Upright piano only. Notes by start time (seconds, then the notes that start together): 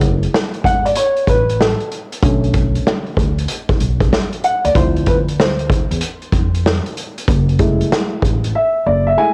Already playing: G#3 A3 E4
0.65 F#5
0.85 D5
0.97 C#5
1.29 B4
1.60 A4
2.22 D3 A3 C#4
4.44 F#5
4.65 D5
4.74 F3 C4 E4 C5
5.08 B4
5.40 C5
7.59 G#3 A3 E4
8.55 E5
8.86 D5
9.07 E5
9.17 G#3 A3 E4 G#5